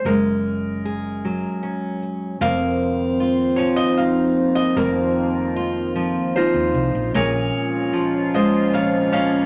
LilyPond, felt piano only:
\new Staff \with { instrumentName = "Felt piano" } { \time 3/4 \key bes \minor \tempo 4 = 76 bes'2~ bes'8 r8 | f''4. des''16 ees''16 f''8. ees''16 | bes'2 <f' c''>4 | <bes' des''>4. <c'' ees''>8 <des'' f''>8 <des'' f''>8 | }